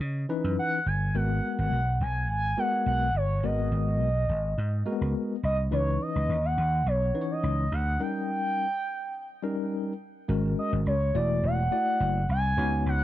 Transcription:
0.00 C#3
0.29 E3 C#4 D#4 B4
0.44 F#2
0.59 F#5
0.86 G1 G#5
1.15 G#1 G#3 B3 F#4 A#4 F#5
1.59 G#1 F#5
1.72 B1
2.01 B1 G#5
2.29 G#1 G#5
2.57 G#3 B3 F#4 A#4 F#5
2.86 B1 F#5
3.14 G1 C#5
3.43 G#1 G#3 B3 F#4 A#4 D#5
3.72 G#1
4.01 B1
4.29 G#1
4.58 G#2
4.86 G#3 A#3 F#4 A#4
4.92 B3
5.01 C#2
5.43 C2 D#5
5.71 C#2 E3 C#4 D#4 B4 C#5
6.02 D#5
6.16 C#2
6.29 D#2
6.45 F#5
6.58 D#2
6.86 B1 C#5
7.14 E3 C#4 D#4 B4
7.22 C#5
7.31 D#5
7.43 C#2
7.72 D2 F#5
8.00 G3 C#4 D#4 A#4 G5
9.43 G3 C#4 D#4 A#4
10.28 G#1 G#3 C#4 F#4 A#4
10.59 D#5
10.73 G#1
10.86 C#2 C#5
11.14 E1 A3 E4 F#4 D5
11.43 E1 F#5
11.71 A3 E4 F#4 D5
12.00 F#1
12.29 C2 G#5
12.57 C#2 B3 D#4 F#4 C#5
12.86 C#2 F#5

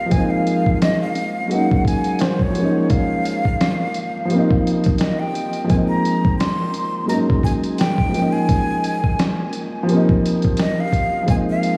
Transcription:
Already playing: F3 G3 A#3 C4 D#4 F5
0.06 F3 G#3
0.11 A#3 G#5, kick, closed hi-hat
0.16 C4 D#4
0.30 F5
0.47 closed hi-hat
0.66 kick
0.82 D#5, snare, closed hi-hat
1.01 F5
1.15 closed hi-hat
1.48 F#3 G#3 A#3 F#5, closed hi-hat
1.53 C#4 D#4
1.71 kick
1.85 G#5, kick, closed hi-hat
2.04 closed hi-hat
2.19 C5, snare, closed hi-hat
2.39 C#5, kick
2.50 F3 G3
2.55 A#3, closed hi-hat
2.60 G#3 C#4 D#4
2.90 F5, kick, closed hi-hat
3.25 closed hi-hat
3.45 kick
3.61 snare, closed hi-hat
3.94 closed hi-hat
4.25 F3 G3
4.30 A#3, closed hi-hat
4.35 C4 D#4
4.51 kick
4.67 closed hi-hat
4.84 kick, closed hi-hat
4.98 D#5, snare, closed hi-hat
5.19 G5
5.35 closed hi-hat
5.53 closed hi-hat
5.64 F3 G#3
5.69 A#3 G#5, kick, closed hi-hat
5.74 C4 D#4
5.88 A#5
6.05 closed hi-hat
6.25 kick
6.39 C6, snare, closed hi-hat
6.74 closed hi-hat
7.06 F#3 G#3 A#3 A#5, closed hi-hat
7.11 C#4 D#4
7.30 kick
7.43 G#5, kick, closed hi-hat
7.64 closed hi-hat
7.78 G5, snare, closed hi-hat
7.98 kick
8.09 F3 G#3
8.14 A#3 C#4, closed hi-hat
8.22 D#4
8.32 G#5
8.49 kick, closed hi-hat
8.84 closed hi-hat
9.04 kick
9.19 snare, closed hi-hat
9.53 closed hi-hat
9.83 F3 G3
9.89 A#3, closed hi-hat
9.93 C4 D#4
10.09 kick
10.26 closed hi-hat
10.42 kick, closed hi-hat
10.57 D#5, snare, closed hi-hat
10.80 F5
10.93 kick, closed hi-hat
11.23 F3 G#3
11.28 A#3 G#5, kick, closed hi-hat
11.32 C4 D#4
11.50 F5
11.63 closed hi-hat

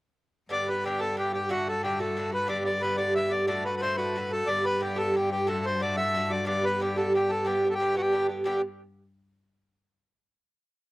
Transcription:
0.49 G2 D3 B3 G4 D5
0.68 D3 B3 G4 B4
0.84 G2 D3 B3 G4
0.99 G2 D3 B3 G4 A4
1.17 G2 D3 B3 G4
1.33 D3 B3 G4
1.49 A2 D3 A3 F#4
1.68 D3 A3 F#4 A4
1.83 A2 D3 A3 F#4 G4
1.99 A2 D3 A3 F#4 A4
2.17 A2 D3 A3 F#4
2.32 D3 A3 F#4 B4
2.47 G2 D3 B3 G4 D5
2.65 D3 B3 G4 D5
2.81 G2 D3 B3 G4 B4
2.97 G2 D3 B3 G4 D5
3.16 G2 D3 B3 G4 E5
3.31 D3 B3 G4 D5
3.47 A2 D3 A3 F#4 D5
3.65 D3 A3 F#4 B4
3.77 B4
3.82 A2 D3 A3 F#4 C5
3.96 A2 D3 A3 F#4 B4
4.16 A2 D3 A3 F#4
4.31 D3 A3 F#4 A4
4.47 G2 D3 B3 G4 D5
4.65 D3 B3 G4 B4
4.81 G2 D3 B3 G4
4.96 G2 D3 B3 G4 A4
5.14 G2 D3 B3 G4
5.30 D3 B3 G4
5.47 A2 D3 A3 F#4 A4
5.64 D3 A3 F#4 C5
5.80 A2 D3 A3 F#4 D5
5.96 A2 D3 A3 F#4 E5
6.14 A2 D3 A3 F#4
6.30 D3 A3 F#4 D5
6.45 G2 D3 B3 G4 D5
6.63 D3 B3 G4 B4
6.80 G2 D3 B3 G4
6.96 G2 D3 B3 G4 A4
7.14 G2 D3 B3 G4
7.30 D3 B3 G4 A4
7.45 G2 D3 B3 G4
7.64 D3 B3 G4
7.70 A4
7.74 G4
7.80 G2 D3 B3 G4
7.95 G2 D3 B3 F#4 G4
8.01 G4
8.12 G2 D3 B3 G4
8.29 D3 B3 G4
8.44 G2 D3 B3 G4

